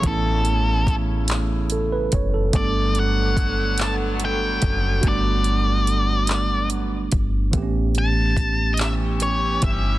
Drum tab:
HH |xxxxxx|xxxxxx|xxxxxx|xxxxxx|
CP |---x--|---x--|---x--|---x--|
BD |o-o--o|o-o--o|o----o|o-o--o|